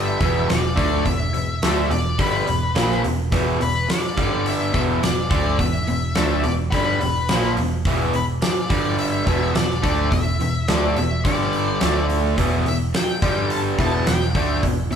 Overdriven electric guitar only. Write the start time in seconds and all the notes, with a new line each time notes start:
Already playing: G2 D3 G3
0.20 E2 B2 E3
0.49 E2 B2
0.76 D3 A3 D4
1.05 E2 B2
1.33 E2 B2
1.63 D3 A3 D4
1.90 E2 B2
2.18 G2 D3 G3
2.47 E2 B2
2.75 A#2 F3 A#3
3.03 E2 B2
3.32 E2 B2 E3
3.60 E2 B2
3.89 muted overdriven electric guitar stroke
4.17 G2 D3 G3
4.74 E2 B2 E3
5.03 E2 B2
5.31 D3 A3 D4
5.59 E2 B2
5.87 E2 B2
6.16 D3 A3 D4
6.44 E2 B2
6.73 G2 D3 G3
7.01 E2 B2
7.30 A#2 F3 A#3
7.57 E2 B2
7.86 E2 B2 E3
8.14 E2 B2
8.43 muted overdriven electric guitar stroke
8.70 G2 D3 G3
9.27 E2 B2 E3
9.55 E2 B2
9.83 D3 A3 D4
10.12 E2 B2
10.41 E2 B2
10.68 D3 A3 D4
10.98 E2 B2
11.25 G2 D3 G3
11.81 D3 A3 D4
12.38 E2 B2 E3
12.67 E2 B2
12.94 muted overdriven electric guitar stroke
13.22 G2 D3 G3
13.79 E2 B2 E3
14.07 E2 B2
14.35 D3 A3 D4
14.63 E2 B2
14.91 E2 B2